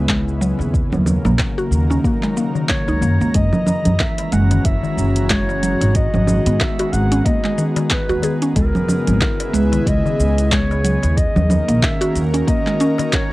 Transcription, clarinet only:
2.69 C#5
3.35 D#5
4.00 E5
4.32 F#5
4.65 E5
5.30 C#5
5.95 D#5
6.60 E5
6.93 F#5
7.25 D#5
7.91 B4
8.56 A#4
9.54 B4
9.87 D#5
10.52 C#5
11.17 D#5
11.83 E5
12.48 D#5
13.13 C#5

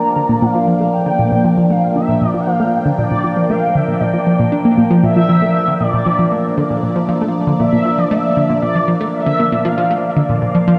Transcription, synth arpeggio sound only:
0.16 D3
0.29 A#2
0.42 A#2
0.55 F3
0.68 F3
0.80 A3
1.06 D3
1.19 A#2
1.32 A#2
1.44 F3
1.57 F3
1.70 A3
1.96 D3
2.09 A#2
2.21 A#2
2.34 F3
2.47 F3
2.60 A3
2.85 D3
2.98 A#2
3.11 A#2
3.24 F3
3.37 F3
3.50 A3
3.75 D3
3.88 A#2
4.01 A#2
4.14 F3
4.27 F3
4.39 A#2
4.52 D4
4.65 A#3
4.78 A#2
4.91 F3
5.03 A#2
5.16 F3
5.29 F3
5.42 A3
5.68 D3
5.80 A#2
5.93 A#2
6.06 F3
6.19 F3
6.32 A3
6.57 D3
6.70 A#2
6.83 A#2
6.96 F3
7.08 F3
7.21 A3
7.47 D3
7.60 A#2
7.73 A#2
7.85 F3
7.98 F3
8.11 A3
8.37 D3
8.49 A#2
8.62 A#2
8.75 F3
8.88 F3
9.01 A3
9.26 D3
9.39 A#2
9.52 A#2
9.65 F3
9.78 F3
9.91 A3
10.16 D3
10.29 A#2
10.42 A#2
10.55 F3
10.68 F3

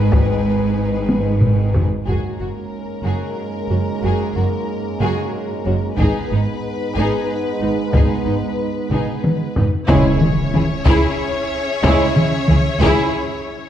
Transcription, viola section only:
Already playing: D#4
2.07 F#4
2.39 F#4
3.04 F#4
3.70 F#4
4.02 F#4
4.35 F#4
5.00 F#4
5.66 F#4
5.98 D#4
6.31 D#4
6.96 D#4
7.61 D#4
7.94 D#4
8.26 D#4
8.91 D#4
9.56 D#4
9.88 E4
10.53 E4
10.86 E4
11.84 E4
12.49 E4
12.82 E4

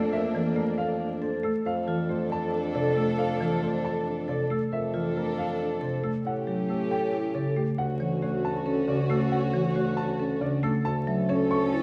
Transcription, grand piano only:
Already playing: A4
0.13 E5
0.56 A#4
0.78 F5
1.22 C5
1.44 A4
1.66 F5
2.10 C5
2.32 A5
2.76 D5
2.97 A4
3.18 F5
3.62 C5
3.84 A5
4.29 D5
4.51 A4
4.73 E5
5.17 A#4
5.38 F5
5.82 C5
6.04 A4
6.27 F#5
6.70 A4
6.91 G5
7.35 C#5
7.57 G4
7.78 F#5
8.22 C#5
8.45 A5
8.88 D5
9.10 A4
9.32 F#5
9.76 C#5
9.97 A5
10.41 D5
10.63 A4
10.85 A5
11.29 C#5
11.51 C#6

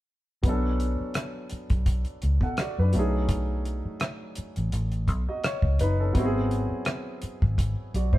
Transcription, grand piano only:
0.43 F#3 B3 C#4
0.48 D4 A4
2.43 A4 F#5
2.60 F#4 D5
2.79 D4 B4
2.93 F#3 A3 C#4
2.98 D#4 G#4
5.29 F#4 D#5
5.45 C#5
5.81 D#4 B4
6.00 C#4 A4
6.13 F#3 B3 C4
6.17 E4 F#4
6.25 G#4
7.95 F#4 D5
8.13 E4 C5

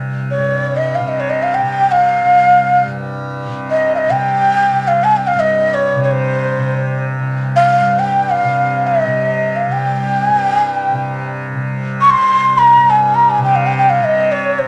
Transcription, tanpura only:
Already playing: C2 G2 C3
0.37 G2
0.99 C3
1.61 C3
2.23 C2
2.85 G2
3.47 C3
4.09 C3
4.71 C2
5.34 G2
5.95 C3
6.58 C3
7.19 C2
7.80 G2
8.43 C3
9.05 C3
9.67 C2
10.28 G2
10.91 C3
11.53 C3
12.15 C2
12.77 G2
13.38 C3
14.00 C3
14.64 C2

